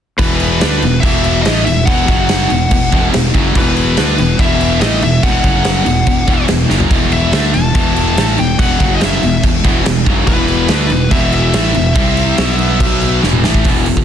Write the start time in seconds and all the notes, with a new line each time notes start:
0.18 E1 E2 B2 E3 B4, kick, crash
0.40 crash
0.61 D2 D3 A3 D4, snare, crash
0.82 E1 E2 B2, crash
1.00 E1 E2 B2 E3 E5, kick, crash
1.24 crash
1.42 A1 A2 E3 A3 D#5, snare, crash
1.65 E1 E2 B2 E5, crash
1.85 E1 E2 B2 E3 F#5, kick, crash
2.08 F#1 F#2 C#3 F#3, kick, crash
2.29 snare, crash
2.50 E1 E2 B2, crash
2.71 E1 E2 B2, kick, crash
2.92 E1 E2 B2 E3, kick, crash
3.14 E1 E2 B2, snare, crash
3.34 F#1 F#2 C#3 F#3, kick, crash
3.55 E1 E2 B2 E3 B4, kick, crash
3.77 crash
3.97 D2 D3 A3 D4, snare, crash
4.18 E1 E2 B2, crash
4.39 E1 E2 B2 E3 E5, kick, crash
4.61 crash
4.80 A1 A2 E3 A3 D#5, snare, crash
5.02 E1 E2 B2 E5, crash
5.23 E1 E2 B2 E3 F#5, kick, crash
5.44 F#1 F#2 C#3 F#3, kick, crash
5.64 snare, crash
5.86 E1 E2 B2, crash
6.07 E1 E2 B2, kick, crash
6.27 E1 E2 B2 E3, kick, crash
6.48 E1 E2 B2, snare, crash
6.69 F#1 F#2 C#3 F#3, snare
6.80 floor tom
6.91 E1 E2 B2 E3, kick, crash
7.12 E5, crash
7.33 D2 D3 A3 D4, snare, crash
7.54 E1 E2 B2 A5, crash
7.75 E1 E2 B2 E3, kick, crash
7.96 crash
8.17 A1 A2 E3 A3, snare, crash
8.38 E1 E2 B2 G5, crash
8.59 E1 E2 B2 E3 F#5, kick, crash
8.79 F#1 F#2 C#3 F#3, kick, crash
8.95 D#5
9.01 E5, snare, crash
9.23 E1 E2 B2, crash
9.43 E1 E2 B2, kick, crash
9.64 E1 E2 B2 E3, kick, crash
9.86 E1 E2 B2, snare, crash
10.06 F#1 F#2 C#3 F#3, kick, crash
10.27 E1 E2 B2 E3 B4, kick, crash
10.48 crash
10.68 D2 D3 A3 D4, snare, crash
10.90 E1 E2 B2, crash
11.11 E1 E2 B2 E3 E5, kick, crash
11.32 E5, crash
11.53 A1 A2 E3 A3, snare, crash
11.74 E1 E2 B2, crash
11.95 C2 C3 G3 C4, kick, crash
12.17 crash
12.38 B1 B2 F#3 B3, snare, crash
12.59 crash
12.80 kick, crash
13.01 crash
13.22 E1 E2 B2 E3, snare
13.33 mid tom
13.44 A1 A2 E3 A3, snare
13.54 kick
13.65 E1 E2 B2 E3, kick, open hi-hat
13.86 E2 B2, open hi-hat
13.97 E2 B2, kick